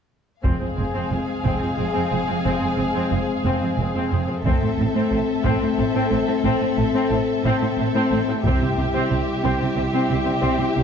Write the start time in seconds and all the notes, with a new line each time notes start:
0.43 F1 F2 G#3 C4 G#4 F5, taiko
0.60 F2 C4
0.77 F1 F2 C4
0.94 F2 C4
1.11 F1 F2 C4
1.44 F1 F2 C4, taiko
1.61 F2 C4
1.77 F1 F2 C4
1.93 F2 C4
2.10 F1 F2 C4
2.27 F2 C4
2.44 F1 F2 C4
2.60 F2 C4
2.77 F1 F2 C4
2.94 F2 C4
3.11 F1 F2 C4
3.44 F1 F2 C4
3.61 F2 C4
3.78 F1 F2 C4
3.95 F2 C4
4.11 F1 F2 C4
4.27 F2 C4
4.44 A1 A2 A3 C4 A4 E5, taiko
4.62 A2 C4
4.78 A1 A2 C4
4.94 A2 C4
5.11 A1 A2 C4
5.44 A1 A2 C4, taiko
5.60 A2 C4
5.77 A1 A2 C4
5.94 A2 C4
6.10 A1 A2 C4
6.27 A2 C4
6.43 A1 A2 C4
6.60 A2 C4
6.77 A1 A2 C4
6.93 A2 C4
7.10 A1 A2 C4
7.43 A1 A2 C4
7.61 A2 C4
7.77 A1 A2 C4
7.94 A2 C4
8.11 A1 A2 C4
8.29 A2 C4
8.43 C2 C3 G3 C4 E4 G4 E5, taiko
8.62 C3 C4
8.78 C2 C3 C4
8.93 C3 C4
9.10 C2 C3 C4
9.43 C2 C3 C4
9.60 C3 C4
9.76 C2 C3 C4
9.93 C3 C4
10.09 C2 C3 C4
10.25 C3 C4
10.41 C2 C3 C4
10.58 C3 C4
10.76 C2 C3 C4